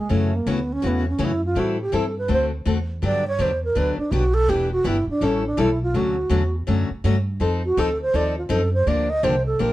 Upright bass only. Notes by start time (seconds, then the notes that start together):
0.10 F#2
0.46 D2
0.83 E2
1.19 F#2
1.56 A2
1.93 G2
2.29 D2
2.66 E2
3.02 G2
3.39 E2
3.76 D2
3.98 muted upright bass stroke
4.12 B1
4.48 E1
4.85 G1
5.07 muted upright bass stroke
5.21 A1
5.58 B1
5.94 D2
6.30 E2
6.68 F#2
6.90 muted upright bass stroke
7.04 G2
7.40 F2
7.77 D2
8.13 D#2
8.50 F#2
8.86 D2
9.23 C2
9.60 A#1